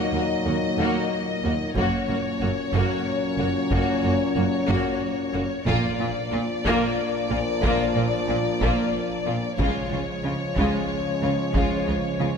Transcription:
Already playing: A#2 F#3 A#3 D#4 F#4 D#5
0.13 D#2 A#3 F#4
0.46 D#2 A#3 F#4
0.78 D#2 A#3 F#4
1.43 D#2 A#3 F#4
1.75 F#1 F#2 A#2 F#3 A#3 C#4 F#4 C#5, taiko
2.08 F#1 F#2 A#3 F#4
2.41 F#1 F#2 A#3 F#4
2.73 F#1 F#2 A#3 F#4, taiko
3.38 F#1 F#2 A#3 F#4
3.71 F#1 F#2 A#3 F#4, taiko
4.03 F#1 F#2 A#3 F#4
4.35 F#1 F#2 A#3 F#4
4.67 F#1 F#2 A#3 F#4, taiko
5.33 F#1 F#2 A#3 F#4
5.66 A#1 A#2 F3 A#3 D4 F4 D5, taiko
5.99 A#1 A#2 A#3 F4
6.31 A#1 A#2 A#3 F4
6.64 A#1 A#2 A#3 F4, taiko
7.30 A#1 A#2 A#3 F4
7.62 A#1 A#2 A#3 F4, taiko
7.95 A#1 A#2 A#3 F4
8.28 A#1 A#2 A#3 F4
8.61 A#1 A#2 A#3 F4, taiko
9.26 A#1 A#2 A#3 F4
9.58 C#2 C#3 F3 G#3 C#4 F4 C#5, taiko
9.91 C#2 C#3 G#3 F4
10.24 C#2 C#3 G#3 F4
10.57 C#2 C#3 G#3 F4, taiko
11.22 C#2 C#3 G#3 F4
11.54 C#2 C#3 G#3 F4, taiko
11.86 C#2 C#3 G#3 F4
12.19 C#2 C#3 G#3 F4

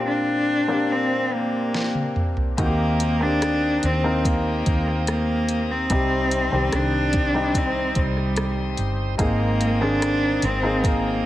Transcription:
Already playing: A#2 A#3 C4 D4 F4 G4
0.08 D4
0.68 A#3 C4 D4 G4
0.92 C4
1.34 A#3
1.74 snare
1.95 high tom
2.16 mid tom
2.37 floor tom
2.57 D#2 D#3 A#3 C4 D#4 F#4 G4 C5 A#5 D#6, kick, closed hi-hat
2.66 G4
3.00 closed hi-hat
3.20 A#3 C4 D4 G4
3.42 cross-stick, closed hi-hat
3.83 D#2 C4, closed hi-hat
4.04 A#3 C4 D#4 A#4
4.25 A#3, kick, closed hi-hat
4.66 D#2, kick, closed hi-hat
4.88 cross-stick
5.07 A#3, cross-stick, closed hi-hat
5.49 closed hi-hat
5.71 C4
5.90 C2 C3 G3 C4 D#4 G4 C5 C6, kick, closed hi-hat
6.31 closed hi-hat
6.52 C2 D#3 G3 C4 G4
6.72 C2 D4, cross-stick, closed hi-hat
7.13 kick, closed hi-hat
7.34 G3 C4 D#4 G4
7.55 C4, kick, closed hi-hat
7.95 C2 G3, kick, closed hi-hat
8.17 cross-stick
8.36 cross-stick, closed hi-hat
8.77 G1, closed hi-hat
9.18 G#1 G#2 A#3 C4 D#4 G#4 C5 A#5 D#6, kick, closed hi-hat
9.61 closed hi-hat
9.80 D#3 A#3 C4 D4 G#4
10.02 cross-stick, closed hi-hat
10.42 G#1 C4, closed hi-hat
10.63 A#3 C4 D#4 G#4
10.84 A#3, kick, closed hi-hat

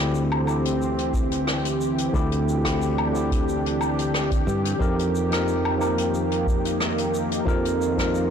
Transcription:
Already playing: D2 D3 E3 C4 G4
0.00 E4 G4
0.15 shaker
0.32 low woodblock
0.45 D3 C4 E4, low woodblock, shaker
0.50 G4
0.65 closed hi-hat, shaker
0.82 shaker
0.98 closed hi-hat
1.14 kick, shaker
1.32 closed hi-hat, shaker
1.47 cross-stick, shaker
1.65 closed hi-hat, shaker
1.81 shaker
1.98 closed hi-hat, shaker
2.13 D2 D3 C4 D4 E4 G4, kick, shaker
2.32 closed hi-hat, shaker
2.49 shaker
2.64 D3 C4 E4 G4, kick, cross-stick, closed hi-hat, shaker
2.82 shaker
2.98 low woodblock
3.12 D3 C4 E4, shaker
3.17 G4
3.32 kick, closed hi-hat, shaker
3.49 shaker
3.66 closed hi-hat
3.81 low woodblock, shaker
3.99 closed hi-hat, shaker
4.14 cross-stick, shaker
4.31 kick, closed hi-hat, shaker
4.47 G2, shaker
4.65 closed hi-hat, shaker
4.79 F2 D#3 F3 A#3 D#4 G4 A#4, kick, shaker
4.99 closed hi-hat, shaker
5.16 shaker
5.31 F3 D#4 G4 A#4, cross-stick, closed hi-hat, shaker
5.48 shaker
5.65 low woodblock
5.78 F3 D#4 G4, low woodblock, shaker
5.83 A#4
5.98 closed hi-hat, shaker
6.14 shaker
6.32 closed hi-hat
6.47 kick, shaker
6.65 closed hi-hat, shaker
6.80 cross-stick, shaker
6.98 closed hi-hat, shaker
7.14 shaker
7.31 closed hi-hat, shaker
7.45 F2 F3 D#4 F4 G4 A#4, kick, shaker
7.65 closed hi-hat, shaker
7.82 shaker
7.97 F3 D#4 G4 A#4, kick, cross-stick, closed hi-hat, shaker
8.15 shaker

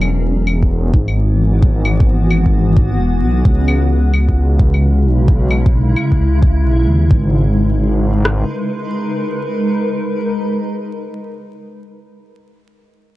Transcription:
Already playing: E1 E3 B3 C#4 G#4 A#4
0.01 claves
0.31 F#4
0.44 F#5, claves
0.63 kick
0.94 G#1, kick
1.08 claves
1.62 kick
1.85 claves
2.00 kick
2.31 claves
2.46 kick
2.77 kick
2.99 E1
3.22 B1
3.44 C#2 C#3, kick
3.68 claves
3.76 G#3
3.85 E4
4.13 C#2, claves
4.29 kick
4.59 kick
4.74 claves
5.05 B1
5.28 kick
5.51 claves
5.66 kick
5.96 claves
6.12 kick
6.20 C#2
6.42 kick
6.65 B1
6.88 D#2
7.10 G#1 G#3, kick
7.20 D#4
7.27 A#4
7.33 B4
8.25 cross-stick

